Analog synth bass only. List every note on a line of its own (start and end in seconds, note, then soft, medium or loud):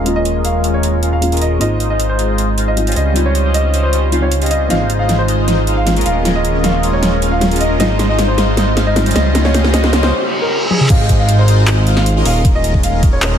0.00 1.59 D#1 medium
1.61 2.94 G#1 medium
2.96 4.69 C#2 medium
4.71 6.04 G#1 medium
6.06 7.78 D#1 medium
7.80 9.14 G#1 medium
9.16 10.12 C#2 medium
10.90 12.24 G#1 medium
12.25 13.38 D#1 medium